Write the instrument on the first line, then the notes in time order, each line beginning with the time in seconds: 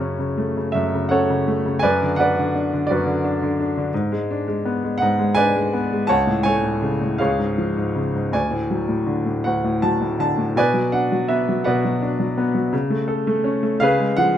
grand piano
Already playing: F#2 C#3
0.01 C#4
0.19 C#3
0.38 A3
0.57 C#3
0.72 F#2 E5
0.94 C#3
1.09 C#4 A4 C#5 F#5
1.30 C#3
1.48 A3
1.66 C#3
1.79 B4 D5 G#5
1.84 F#2
2.02 D3
2.16 D4 B4 D5 F#5
2.39 D3
2.55 D4
2.73 D3
2.87 F#4 B4 D5
2.91 F#2
3.06 D3
3.24 D4
3.42 D3
3.60 D4
3.77 D3
3.94 G#2
4.12 G#3
4.31 D4
4.48 G#3
4.65 B3
4.84 G#3
4.98 F#5
5.02 G#2
5.19 G#3
5.35 D4 B4 D5 G#5
5.56 G#3
5.73 B3
5.93 G#3
6.07 C#2 C#5 F#5 A5
6.27 A2
6.43 A3 C#5 G#5
6.64 A2
6.82 C#3
7.01 A2
7.18 C#2 G#4 C#5 F5
7.39 G#2
7.58 F3
7.77 G#2
7.95 C#3
8.14 G#2
8.33 D2 D5 G#5
8.51 A2
8.71 F#3
8.88 A2
9.07 D3
9.26 A2
9.44 D2 F#5
9.64 A2
9.82 F#3 A5
10.01 A2
10.19 D3 A5
10.38 A2
10.56 B2 B4 D5 G#5
10.74 F#3
10.92 D4 F#5
11.12 F#3
11.28 B3 E5
11.49 F#3
11.64 B2 B4 D5 F#5
11.85 F#3
12.02 D4
12.20 F#3
12.38 B3
12.55 F#3
12.73 C#3
12.90 A3
13.08 A4
13.27 A3
13.44 C#4
13.63 A3
13.80 C#3 G#4 B4 F5
13.99 G#3
14.17 F3 F#5